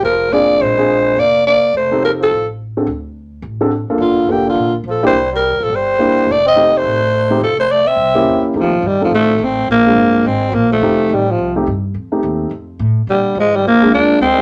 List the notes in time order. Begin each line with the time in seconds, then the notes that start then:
0.02 F1 F3 A#4
0.31 A#3 C4 D4 F4 G#4 D5
0.60 A#1 G#3 C5
0.78 C4 D4 F4 G#4
1.16 F1 A#3 D5
1.47 A#3 D5
1.74 F1 A3 C5
1.91 C4 D#4 G4 A4
2.03 F3 A#4
2.20 F3 A4
2.31 A1
2.77 C4 D4 F#4 A4
2.87 D2
3.42 A1
3.61 C4 D4 F#4 A4
3.88 A#3 D4 F4 A4, muted upright bass stroke
3.98 G1 D3 F4
4.27 F1 D3 A#3 D4 F4 A4
4.32 G4
4.47 D3 F4
4.55 A#1
4.84 A#1 F3
4.90 A4
5.03 G3 A#3 D4 E4 G4
5.07 C5
5.12 C2
5.33 G3 A#4
5.51 E2
5.60 A#1 F3 A4
5.70 G1 G3
5.75 C5
5.99 A#3 D4 E4 G4
6.16 muted upright bass stroke
6.27 F1 A3
6.32 D5
6.46 C4 D#5
6.56 A3 C4 D#4 G4
6.74 A3 C5
6.83 A1
7.30 A3 C4 D#4 G4
7.40 F1 F3 A4
7.58 A3 C5
7.69 A3 D5
7.86 C4 E5, muted upright bass stroke
7.96 C2
8.15 A#3 C#4 E4 G4
8.26 E2
8.54 F2 C3 A3 C4 D#4 G4
8.60 F3
8.64 D#2
8.73 C2
8.82 G2 D#3
8.87 G3
9.01 D3 F3 A3 C4 D#4 A4
9.10 A2 F3
9.15 A3
9.39 A1 A3
9.44 C4
9.67 A#1 F3 A#3
9.86 G#3 C4 D4 F4
9.96 G1
10.24 G#1 G#3 C4
10.52 A#1 F3 A#3
10.70 F3 A3
10.81 F1 A3 C4 D#4 G4
11.09 A1 D#3
11.14 G3
11.27 C3
11.31 F3
11.38 C2
11.56 A3 C4 D#4 G4
11.67 G2
11.94 F2
12.12 A3 C4 D#4 G4
12.23 D#2
12.51 F2
12.79 A2
13.07 A#2 D3 G3
13.35 G#2 F3
13.40 G#3
13.54 D#3 G3
13.64 F2 F3 A#3
13.82 G#3 C4 D4 F4
13.93 D#2 A#3 D4
14.20 D2 G#3 C4
14.38 G#3 C4 D4 F4